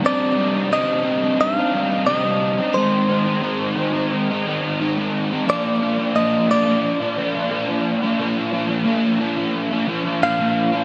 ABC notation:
X:1
M:4/4
L:1/16
Q:1/4=89
K:Cm
V:1 name="Clean electric guitar"
d4 e4 f4 e4 | c12- c2 z2 | d4 e2 d8- d2- | d12 f4 |]
V:2 name="Overdriven electric guitar"
[C,G,CDE]2 [G,CDE] [CDE] [C,G,CDE]2 [G,CDE] [CDE]2 [CDE] [G,CDE] [CDE] [C,G,CDE] [CDE]2 [CDE] | [A,,E,A,CE]2 [E,A,CE] [A,CE] [A,,E,A,CE]2 [E,A,CE] [A,CE]2 [A,CE] [E,A,CE] [A,CE] [A,,E,A,CE] [A,CE]2 [A,CE] | [B,,F,B,DF]2 [F,B,DF] [B,DF] [B,,F,B,DF]2 [F,B,DF] [B,DF]2 [B,DF] [F,B,DF] [B,DF] [B,,F,B,DF] [B,DF]2 [B,DF] | [B,,F,B,DF]2 [F,B,DF] [B,DF] [B,,F,B,DF]2 [F,B,DF] [B,DF]2 [B,DF] [F,B,DF] [B,DF] [B,,F,B,DF] [B,DF]2 [B,DF] |]